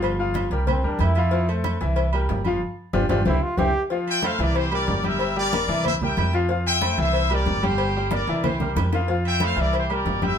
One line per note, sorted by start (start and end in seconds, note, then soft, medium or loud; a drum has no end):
0.00 0.46 G1 medium
0.00 0.14 F3 medium
0.00 0.14 F4 medium
0.00 0.14 F5 medium
0.00 cowbell loud
0.00 high conga soft
0.00 low agogo loud
0.19 0.46 F3 medium
0.19 0.46 F4 medium
0.19 0.46 F5 medium
0.19 high conga soft
0.34 cowbell medium
0.34 high conga medium
0.34 low timbale medium
0.34 low agogo medium
0.50 0.81 C2 medium
0.50 0.78 G3 medium
0.50 0.79 G4 medium
0.50 0.79 A#4 medium
0.50 cowbell medium
0.50 high conga soft
0.67 0.84 C4 medium
0.67 cowbell loud
0.67 high conga soft
0.67 low conga medium
0.67 low agogo loud
0.83 0.99 E2 medium
0.83 1.10 G3 medium
0.83 1.04 D4 medium
0.83 1.11 G4 medium
0.83 1.11 A#4 medium
0.83 high conga soft
0.99 1.75 F2 medium
0.99 1.50 E4 loud
0.99 cowbell medium
0.99 high conga medium
0.99 low timbale medium
0.99 low agogo loud
1.15 1.30 F3 medium
1.15 1.30 F4 medium
1.15 1.31 F5 medium
1.15 cowbell medium
1.15 high conga soft
1.15 low agogo medium
1.31 1.45 F3 medium
1.31 1.45 F4 medium
1.31 1.46 F5 medium
1.31 cowbell loud
1.31 high conga soft
1.48 1.75 A3 medium
1.48 1.75 A4 medium
1.48 1.75 C5 medium
1.48 high conga soft
1.48 low agogo medium
1.64 cowbell medium
1.64 high conga medium
1.64 low timbale medium
1.64 low agogo loud
1.81 2.26 C2 medium
1.81 2.07 E3 medium
1.81 2.07 E4 medium
1.81 2.08 E5 medium
1.81 cowbell medium
1.81 high conga soft
1.96 cowbell loud
1.96 high conga soft
1.96 low agogo medium
2.13 2.40 G3 medium
2.13 2.40 G4 medium
2.13 2.40 A#4 medium
2.13 high conga soft
2.13 low agogo loud
2.29 2.59 G1 medium
2.29 cowbell medium
2.29 high conga medium
2.29 low timbale medium
2.44 2.59 F3 medium
2.44 2.59 F4 medium
2.44 2.59 F5 medium
2.44 high conga medium
2.44 low agogo medium
2.93 3.06 G1 loud
2.93 3.04 D4 loud
2.93 3.04 F4 loud
2.93 3.04 G4 loud
2.93 cowbell loud
2.93 high conga loud
2.93 high timbale loud
3.09 3.22 G1 medium
3.09 3.21 D4 loud
3.09 3.21 F4 loud
3.09 3.21 G4 loud
3.09 cowbell loud
3.09 high conga loud
3.09 high timbale loud
3.25 3.38 C2 loud
3.25 3.37 C4 loud
3.25 3.37 E4 loud
3.25 3.44 E4 loud
3.25 3.37 G4 loud
3.25 cowbell loud
3.25 high conga loud
3.25 high timbale loud
3.42 3.60 F4 loud
3.57 3.70 C2 loud
3.57 3.69 C4 loud
3.57 3.69 E4 loud
3.57 3.83 G4 loud
3.57 3.69 G4 loud
3.57 cowbell medium
3.57 high conga loud
3.57 high timbale loud
3.90 4.17 F3 medium
3.90 4.18 F4 medium
3.90 4.18 F5 medium
3.90 cowbell loud
3.90 high conga soft
4.07 4.23 E5 medium
4.07 4.23 G5 loud
4.07 high conga soft
4.07 low agogo medium
4.23 4.37 A3 medium
4.23 4.37 A4 medium
4.23 4.40 C5 medium
4.23 4.37 C5 medium
4.23 4.40 F5 loud
4.23 cowbell medium
4.23 high conga loud
4.23 low timbale medium
4.23 low agogo loud
4.39 4.84 C2 medium
4.39 4.66 E3 loud
4.39 4.66 E4 medium
4.39 4.56 A#4 medium
4.39 4.56 D5 medium
4.39 4.67 E5 medium
4.39 cowbell medium
4.55 4.72 G4 medium
4.55 4.72 C5 medium
4.55 cowbell loud
4.55 high conga soft
4.55 low agogo medium
4.72 4.98 G3 medium
4.72 4.98 G4 medium
4.72 4.99 A#4 medium
4.72 5.03 A#4 medium
4.72 5.02 D5 medium
4.72 high conga soft
4.72 low agogo loud
4.87 5.63 G1 medium
4.87 cowbell medium
4.87 high conga medium
4.87 low timbale medium
5.04 5.30 G3 loud
5.04 5.30 G4 medium
5.04 5.37 A#4 medium
5.04 5.37 E5 loud
5.04 5.31 G5 medium
5.04 high conga medium
5.04 low agogo medium
5.19 cowbell loud
5.19 high conga soft
5.19 low agogo loud
5.36 5.50 G3 medium
5.36 5.50 G4 medium
5.36 5.82 A#4 medium
5.36 5.82 D5 loud
5.36 5.50 G5 medium
5.36 high conga soft
5.52 5.66 A#3 medium
5.52 5.66 A#4 medium
5.52 5.66 D5 medium
5.52 cowbell medium
5.52 high conga loud
5.52 low timbale medium
5.52 low agogo medium
5.68 6.13 C2 medium
5.68 5.95 E3 loud
5.68 5.96 E4 loud
5.68 5.96 E5 medium
5.68 cowbell medium
5.68 high conga soft
5.84 5.94 C5 medium
5.84 5.94 E5 medium
5.84 cowbell loud
5.84 high conga soft
5.84 low conga medium
5.84 low agogo loud
6.02 6.29 G3 medium
6.02 6.29 G4 medium
6.02 6.29 A#4 medium
6.02 6.33 E5 medium
6.02 6.33 G5 medium
6.02 high conga soft
6.02 low conga medium
6.17 6.93 F2 medium
6.17 cowbell medium
6.17 high conga medium
6.17 low timbale medium
6.17 low agogo loud
6.33 6.47 F3 medium
6.33 6.47 F4 medium
6.33 6.47 F5 medium
6.33 cowbell medium
6.33 high conga soft
6.33 low agogo medium
6.49 6.76 F3 medium
6.49 6.76 F4 medium
6.49 6.77 F5 medium
6.49 cowbell loud
6.49 high conga soft
6.66 6.97 E5 medium
6.66 6.96 G5 loud
6.66 high conga soft
6.66 low agogo medium
6.81 6.95 A3 medium
6.81 6.95 A4 medium
6.81 6.95 C5 medium
6.81 cowbell medium
6.81 high conga loud
6.81 low timbale medium
6.81 low agogo loud
6.98 7.43 C2 loud
6.98 7.25 E3 loud
6.98 7.25 E4 medium
6.98 7.32 C5 medium
6.98 7.25 E5 medium
6.98 7.31 E5 loud
6.98 cowbell medium
7.13 cowbell loud
7.13 high conga soft
7.13 low agogo medium
7.30 7.57 G3 medium
7.30 7.57 G4 medium
7.30 7.57 A#4 medium
7.30 7.64 A#4 medium
7.30 7.64 D5 loud
7.30 high conga soft
7.30 low agogo loud
7.46 8.22 G1 medium
7.46 cowbell medium
7.46 high conga medium
7.46 low timbale medium
7.63 7.89 G3 medium
7.63 7.90 G4 loud
7.63 8.12 G4 medium
7.63 8.12 C5 loud
7.63 7.90 G5 medium
7.63 high conga loud
7.63 low agogo medium
7.78 cowbell loud
7.78 low agogo loud
7.96 8.09 G3 medium
7.96 8.09 G4 medium
7.96 8.09 G5 medium
7.96 high conga soft
8.11 8.25 A#3 medium
8.11 8.26 A#4 medium
8.11 8.43 A#4 medium
8.11 8.26 D5 medium
8.11 8.43 D5 medium
8.11 cowbell medium
8.11 high bongo loud
8.11 high conga loud
8.11 low timbale medium
8.11 low agogo medium
8.27 8.73 C2 medium
8.27 8.55 E3 medium
8.27 8.55 E4 loud
8.27 8.55 E5 loud
8.27 cowbell medium
8.27 high conga soft
8.44 8.75 G4 medium
8.44 8.75 C5 medium
8.44 cowbell loud
8.44 low bongo loud
8.44 high conga soft
8.44 low conga medium
8.44 low agogo loud
8.60 8.87 G3 medium
8.60 8.87 G4 medium
8.60 8.87 A#4 medium
8.60 low bongo medium
8.60 high conga soft
8.60 low conga medium
8.76 9.51 F2 loud
8.76 cowbell medium
8.76 low bongo loud
8.76 high conga medium
8.76 low timbale medium
8.76 low agogo loud
8.92 9.07 F3 medium
8.92 9.07 F4 medium
8.92 9.07 F5 medium
8.92 cowbell medium
8.92 low bongo medium
8.92 low agogo medium
9.08 9.35 F3 medium
9.08 9.36 F4 medium
9.08 9.36 F5 medium
9.08 cowbell loud
9.08 high conga soft
9.24 9.40 E5 medium
9.24 9.41 G5 loud
9.24 high conga soft
9.24 low agogo medium
9.40 9.54 A3 medium
9.40 9.54 A4 medium
9.40 9.55 C5 medium
9.40 9.58 C5 medium
9.40 9.58 F5 loud
9.40 cowbell medium
9.40 high conga loud
9.40 low timbale medium
9.40 low agogo loud
9.56 10.02 C2 medium
9.56 9.83 E3 medium
9.56 9.83 E4 medium
9.56 9.74 A#4 medium
9.56 9.74 D5 loud
9.56 9.83 E5 medium
9.56 cowbell medium
9.73 9.90 G4 medium
9.73 9.90 C5 medium
9.73 cowbell loud
9.73 high conga soft
9.73 low agogo medium
9.90 10.16 G3 medium
9.90 10.17 G4 medium
9.90 10.16 A#4 medium
9.90 10.23 A#4 medium
9.90 10.23 D5 medium
9.90 high conga soft
9.90 low agogo loud
10.05 10.38 G1 medium
10.05 cowbell medium
10.05 high conga medium
10.05 low timbale medium
10.22 10.38 G3 medium
10.22 10.38 G4 loud
10.22 10.38 C5 medium
10.22 10.38 E5 loud
10.22 10.38 G5 loud
10.22 high conga loud
10.22 low agogo medium